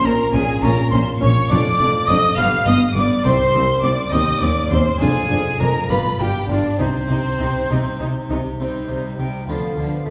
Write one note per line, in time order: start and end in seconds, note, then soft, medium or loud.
0.04 0.13 A#1 medium
0.04 0.13 A#2 medium
0.04 0.31 A#2 medium
0.04 0.12 C#4 medium
0.04 0.33 A#4 medium
0.04 0.34 A#5 loud
0.04 0.32 A#5 medium
0.33 0.42 A#1 medium
0.33 0.60 A#2 medium
0.33 0.42 A#2 medium
0.33 0.41 C#4 medium
0.33 0.63 G#4 medium
0.33 0.63 G#5 medium
0.33 0.62 G#5 loud
0.62 0.71 A#1 medium
0.62 0.72 A#2 medium
0.62 0.90 A#2 medium
0.62 0.71 C#4 medium
0.62 1.26 C#4 medium
0.62 1.27 F4 medium
0.62 0.92 A#4 medium
0.62 1.27 A#4 medium
0.62 0.90 A#5 medium
0.62 0.92 A#5 loud
0.91 1.00 A#1 medium
0.91 1.00 A#2 medium
0.91 1.19 A#2 medium
0.91 1.00 C#4 medium
0.91 1.00 C5 medium
0.91 0.98 C6 medium
0.91 1.21 C6 loud
1.21 1.30 A#1 medium
1.21 1.48 A#2 medium
1.21 1.30 A#2 medium
1.21 1.29 C#4 medium
1.21 1.50 C#5 medium
1.21 1.50 C#6 loud
1.21 1.52 C#6 medium
1.50 1.59 F1 medium
1.50 1.77 F2 medium
1.50 1.59 F2 medium
1.50 1.58 D4 medium
1.50 2.34 D4 medium
1.50 2.34 F4 medium
1.50 2.34 G#4 medium
1.50 2.08 D5 loud
1.50 2.08 D6 loud
1.50 2.09 D6 loud
1.79 1.88 F1 medium
1.79 2.05 F2 medium
1.79 1.88 F2 medium
1.79 1.88 D4 medium
2.07 2.17 F1 medium
2.07 2.35 F2 medium
2.07 2.18 F2 medium
2.07 2.17 D4 medium
2.07 2.38 D#5 loud
2.07 2.37 D#6 loud
2.07 2.37 D#6 medium
2.37 2.46 G1 medium
2.37 2.64 G2 medium
2.37 2.47 G2 medium
2.37 3.21 B3 medium
2.37 2.46 B3 medium
2.37 3.21 D4 medium
2.37 3.21 G4 medium
2.37 2.67 F5 loud
2.37 2.45 F6 loud
2.37 2.66 F6 medium
2.66 2.75 G1 medium
2.66 2.93 G2 medium
2.66 2.75 G2 medium
2.66 2.75 B3 medium
2.66 2.75 D#5 medium
2.66 2.96 D#6 loud
2.66 2.74 D#6 loud
2.95 3.04 G1 medium
2.95 3.22 G2 medium
2.95 3.04 G2 medium
2.95 3.05 B3 medium
2.95 3.25 D5 medium
2.95 3.02 D6 medium
2.95 3.25 D6 medium
3.24 3.51 C2 medium
3.24 3.33 C2 medium
3.24 3.34 C2 medium
3.24 4.08 C4 soft
3.24 3.34 C4 medium
3.24 4.08 D#4 soft
3.24 4.09 G4 soft
3.24 3.83 C5 loud
3.24 3.82 C6 loud
3.24 3.84 C6 loud
3.53 3.80 C2 medium
3.53 3.62 C2 medium
3.53 3.63 C2 medium
3.53 3.62 C4 medium
3.82 4.09 C2 medium
3.82 3.91 C2 medium
3.82 3.92 C2 medium
3.82 3.91 C4 medium
3.82 4.12 D5 medium
3.82 4.13 D6 loud
3.82 3.91 D6 medium
4.11 4.38 D#2 medium
4.11 4.21 D#2 medium
4.11 4.96 C4 medium
4.11 4.20 C4 medium
4.11 4.96 D#4 medium
4.11 4.96 G4 medium
4.11 4.42 D#5 medium
4.11 4.41 D#6 loud
4.11 4.41 D#6 medium
4.41 4.50 D#2 medium
4.41 4.68 D#2 medium
4.41 4.51 D#2 medium
4.41 4.49 C4 medium
4.41 4.71 D5 medium
4.41 4.71 D6 loud
4.41 4.71 D6 medium
4.70 4.97 D#2 medium
4.70 4.79 D#2 medium
4.70 4.79 C4 medium
4.70 5.01 C5 medium
4.70 5.00 C6 medium
5.00 5.09 F1 medium
5.00 5.27 F2 medium
5.00 5.09 F2 medium
5.00 5.85 G#3 soft
5.00 5.08 D4 medium
5.00 5.86 D4 soft
5.00 5.86 F4 soft
5.00 5.60 G#4 loud
5.00 5.61 G#5 loud
5.00 5.59 G#5 loud
5.29 5.39 F1 medium
5.29 5.56 F2 medium
5.29 5.39 F2 medium
5.29 5.37 D4 medium
5.60 5.69 F1 medium
5.60 5.87 F2 medium
5.60 5.69 F2 medium
5.60 5.69 D4 medium
5.60 5.89 A#4 medium
5.60 5.92 A#5 medium
5.60 5.90 A#5 loud
5.90 5.98 G1 medium
5.90 6.17 G2 medium
5.90 5.99 G2 medium
5.90 6.76 D4 medium
5.90 5.98 F4 medium
5.90 6.76 F4 medium
5.90 5.98 B4 medium
5.90 6.22 B5 medium
5.90 6.20 B5 loud
6.19 6.28 G1 medium
6.19 6.46 G2 medium
6.19 6.28 G2 medium
6.19 6.28 F4 medium
6.19 6.49 G4 medium
6.19 6.50 G5 loud
6.19 6.49 G5 medium
6.49 6.57 G1 medium
6.49 6.76 G2 medium
6.49 6.58 G2 medium
6.49 6.79 D4 medium
6.49 6.59 F4 medium
6.49 6.83 D5 medium
6.49 6.79 D5 medium
6.80 6.88 C2 medium
6.80 7.07 C3 medium
6.80 6.88 C3 medium
6.80 8.30 C4 medium
6.80 6.89 D#4 medium
6.80 8.27 C5 medium
6.80 8.31 C5 medium
7.08 7.18 C2 medium
7.08 7.36 C3 medium
7.08 7.18 C3 medium
7.08 7.19 D#4 medium
7.39 7.48 C2 medium
7.39 7.66 C3 medium
7.39 7.48 C3 medium
7.39 7.48 D#4 medium
7.69 7.78 C2 medium
7.69 7.97 C3 medium
7.69 7.79 C3 medium
7.69 8.34 C4 medium
7.69 8.35 D#4 medium
7.69 7.79 D#4 medium
8.00 8.08 C2 medium
8.00 8.27 C3 medium
8.00 8.09 C3 medium
8.00 8.09 D#4 medium
8.30 8.38 C2 medium
8.30 8.57 C3 medium
8.30 8.39 C3 medium
8.30 8.38 D#4 medium
8.59 8.68 C2 soft
8.59 8.87 C3 soft
8.59 8.68 C3 soft
8.59 8.88 G3 soft
8.59 9.45 C4 soft
8.59 8.88 D#4 soft
8.59 9.45 D#4 soft
8.59 9.14 C5 medium
8.59 8.89 C5 soft
8.89 8.97 C2 soft
8.89 9.15 C3 soft
8.89 8.98 C3 soft
8.89 9.17 G3 soft
8.89 9.17 D#4 soft
8.89 9.18 C5 soft
9.18 9.27 C2 soft
9.18 9.27 C3 soft
9.18 9.46 C3 soft
9.18 9.47 G3 soft
9.18 9.47 D#4 soft
9.18 9.47 C5 soft
9.18 9.47 G5 soft
9.47 9.56 D2 soft
9.47 9.56 D3 soft
9.47 9.75 D3 soft
9.47 9.76 F3 soft
9.47 10.10 B3 soft
9.47 9.77 D4 soft
9.47 10.10 F4 soft
9.47 9.75 B4 soft
9.47 10.07 F5 medium
9.77 9.85 D2 soft
9.77 10.04 D3 soft
9.77 9.86 D3 soft
9.77 10.05 F3 soft
9.77 10.06 D4 soft
9.77 10.04 B4 soft
10.05 10.10 D2 soft
10.05 10.10 D3 soft
10.05 10.10 F3 soft
10.05 10.10 B4 soft
10.05 10.10 E5 soft